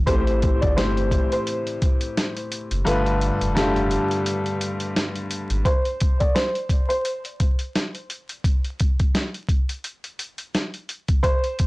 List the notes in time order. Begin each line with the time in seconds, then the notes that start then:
0.06 A1 A2 E3 C4 G4 A4 C5, kick, closed hi-hat
0.16 C5
0.27 closed hi-hat
0.42 kick, closed hi-hat
0.61 G1 D5, kick, closed hi-hat
0.76 A2 E3 C4 G4 C5, snare, closed hi-hat
0.97 closed hi-hat
1.11 kick, closed hi-hat
1.32 C5, closed hi-hat
1.47 closed hi-hat
1.67 closed hi-hat
1.82 kick, closed hi-hat
2.01 closed hi-hat
2.17 snare, closed hi-hat
2.37 closed hi-hat
2.52 closed hi-hat
2.71 F#1, closed hi-hat
2.85 G1 G2 D3 A3 F4 B4, closed hi-hat
3.06 closed hi-hat
3.21 closed hi-hat
3.41 F1, closed hi-hat
3.55 G2 D3 A3 F4 G4, snare, closed hi-hat
3.76 closed hi-hat
3.91 closed hi-hat
4.11 closed hi-hat
4.26 closed hi-hat
4.46 closed hi-hat
4.61 closed hi-hat
4.80 closed hi-hat
4.96 snare, closed hi-hat
5.16 closed hi-hat
5.31 closed hi-hat
5.50 G#1, closed hi-hat
5.65 C5, kick, closed hi-hat
5.85 closed hi-hat
6.00 kick, closed hi-hat
6.20 D5, kick, closed hi-hat
6.35 C5, snare, closed hi-hat
6.55 closed hi-hat
6.69 kick, closed hi-hat
6.89 C5, closed hi-hat
7.05 closed hi-hat
7.25 closed hi-hat
7.40 kick, closed hi-hat
7.59 closed hi-hat
7.75 snare, closed hi-hat
7.95 closed hi-hat
8.10 closed hi-hat
8.29 closed hi-hat
8.44 kick, closed hi-hat
8.65 closed hi-hat
8.80 kick, closed hi-hat
9.00 kick, closed hi-hat
9.15 snare, closed hi-hat
9.34 closed hi-hat
9.49 kick, closed hi-hat
9.69 closed hi-hat
9.84 closed hi-hat
10.04 closed hi-hat
10.19 closed hi-hat
10.38 closed hi-hat
10.55 snare, closed hi-hat
10.74 closed hi-hat
10.89 closed hi-hat
11.08 kick, closed hi-hat
11.23 C5, kick, closed hi-hat
11.44 closed hi-hat
11.59 kick, closed hi-hat